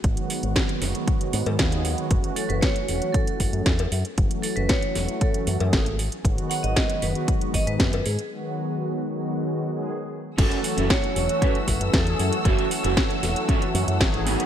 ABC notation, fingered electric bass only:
X:1
M:4/4
L:1/16
Q:1/4=116
K:F#dor
V:1 name="Fingered electric bass" clef=bass
G,,, z2 G,,, z2 F,,, z3 G,, G,, D,,3 z | F,,, z2 F,,, z2 E,,, z3 F,,, F,, E,,2 F,, z | F,,, z2 F,,, z2 E,,, z3 F,, F,, G,,,3 z | G,,, z2 G,,, z2 F,,, z3 G,,, G,, F,,2 G,, z |
z16 | F,,, z2 F,,, z2 E,,, z3 F,,, F,, E,,2 F,, z | F,,, z2 F,,, z2 E,,, z3 F,, F,, G,,,3 z |]